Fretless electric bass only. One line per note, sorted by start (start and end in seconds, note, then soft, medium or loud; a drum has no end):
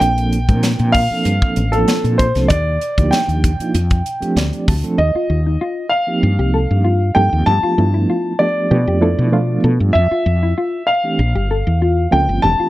0.01 0.50 A#1 medium
0.49 0.75 A#2 medium
0.80 1.06 A#2 medium
1.10 muted fretless electric bass stroke soft
1.25 1.39 G2 medium
1.57 1.84 A1 medium
2.04 2.31 A#2 medium
2.36 2.48 C2 medium
2.50 2.77 D#2 medium
2.98 3.11 D2 medium
3.28 3.55 D#2 medium
3.60 muted fretless electric bass stroke soft
3.75 4.01 F2 medium
4.22 muted fretless electric bass stroke soft
4.36 4.50 D2 medium
4.68 4.82 D2 medium
4.98 5.12 D#2 medium
5.15 muted fretless electric bass stroke soft
5.30 5.56 D#2 medium
6.23 6.37 G2 medium
6.39 6.66 C2 medium
6.71 7.10 G2 medium
7.16 7.30 G2 medium
7.33 7.45 D#2 medium
7.47 7.61 G2 medium
7.63 muted fretless electric bass stroke soft
7.78 8.05 G2 medium
8.71 8.85 B2 medium
8.87 9.14 F2 medium
9.19 9.58 B2 medium
9.64 9.78 B2 medium
9.80 9.93 G2 medium
9.95 10.09 F2 medium
10.11 muted fretless electric bass stroke soft
10.26 10.53 F2 medium
11.19 11.33 A#1 medium
11.35 11.62 G1 medium
11.67 12.06 E2 medium
12.13 12.26 C#2 medium
12.29 12.41 G1 medium
12.44 12.57 F1 medium
12.59 muted fretless electric bass stroke soft